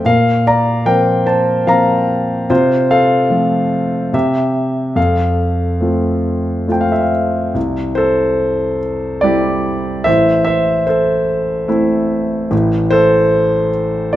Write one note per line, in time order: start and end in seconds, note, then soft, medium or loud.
0.05 2.46 A#2 soft
0.05 0.43 A#4 medium
0.05 0.44 F5 medium
0.47 0.84 D5 medium
0.47 0.88 A#5 medium
0.86 1.65 F3 soft
0.86 1.65 A#3 soft
0.86 1.65 C4 soft
0.86 1.24 A#4 medium
0.86 1.24 G5 medium
1.26 1.64 C5 medium
1.26 1.65 A5 medium
1.67 2.47 F3 soft
1.67 2.47 A#3 soft
1.67 2.47 C4 soft
1.67 2.46 F5 medium
1.67 2.53 A#5 medium
2.50 4.10 C3 medium
2.50 2.88 F4 medium
2.50 2.92 C5 medium
2.91 4.10 A4 medium
2.91 4.10 F5 medium
3.30 4.11 F3 soft
3.30 4.11 A3 soft
3.30 4.11 C4 soft
4.13 4.94 C3 medium
4.13 4.93 G4 soft
4.13 5.00 E5 medium
4.96 7.51 F2 medium
4.96 6.70 A4 soft
4.96 6.70 F5 medium
5.81 6.65 A3 soft
5.81 6.65 C4 soft
5.81 6.66 F4 soft
6.68 7.53 A3 soft
6.68 7.53 C4 soft
6.68 7.53 F4 soft
6.68 6.83 G5 medium
6.81 6.92 F5 medium
6.92 7.02 E5 soft
7.01 7.11 F5 soft
7.54 10.02 C2 soft
7.95 8.78 A4 medium
7.95 8.77 C5 medium
9.21 10.04 G3 soft
9.21 10.04 C4 soft
9.21 10.05 E4 soft
9.21 10.03 G4 medium
9.21 10.08 D5 medium
10.04 12.48 A1 soft
10.04 12.48 A2 medium
10.04 10.45 C5 medium
10.04 10.43 E5 medium
10.45 10.85 C5 medium
10.45 10.84 E5 medium
10.87 11.66 A4 soft
10.87 11.65 C5 medium
11.68 12.49 A3 soft
11.68 12.49 C4 soft
11.68 12.49 E4 medium
12.51 14.16 A1 medium
12.51 14.16 A2 medium
12.90 13.70 A4 medium
12.90 13.69 C5 medium
14.13 14.16 D5 medium